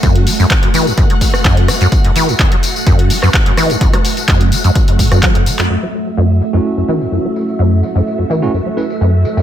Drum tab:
HH |xxo-xxo-xxo-xxox|xxo-xxo-xxo-xxox|xxoxxxoxxxoxxxox|----------------|
TB |x-xxx-xxx-xxx-xx|x-xxx-xxx-xx--xx|x-xx--xxx-xxx-xx|--xxx-xxx-xxx-xx|
CP |----x-------x---|----x------xx---|----x-------x--x|----------------|
SD |-----------r--r-|-----------r--r-|-r---------r----|----------------|
BD |o---o---o-o-o---|o---o---o---o---|o---o---o-o-o---|----------------|

HH |----------------|
TB |x-xxx-xxx-xxx-xx|
CP |----------------|
SD |----------------|
BD |----------------|